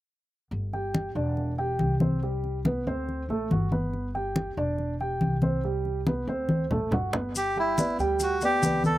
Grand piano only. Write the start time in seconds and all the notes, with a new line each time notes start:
0.73 G4 G5
1.16 D4 D5
1.58 G4 G5
2.01 C4 C5
2.23 G3 G4
2.66 B3 B4
2.87 C4 C5
3.30 A3 A4
3.51 F#4 F#5
3.72 B3 B4
4.15 G4 G5
4.58 D4 D5
5.01 G4 G5
5.43 C4 C5
5.64 G3 G4
6.07 B3 B4
6.29 C4 C5
6.71 A3 A4
6.93 F#4 F#5
7.15 B3 B4
7.57 G3 G4 G5
7.78 B3 B4 D5
8.00 G3 G4 G5
8.42 B3 B4 D5
8.64 B3 B4 D5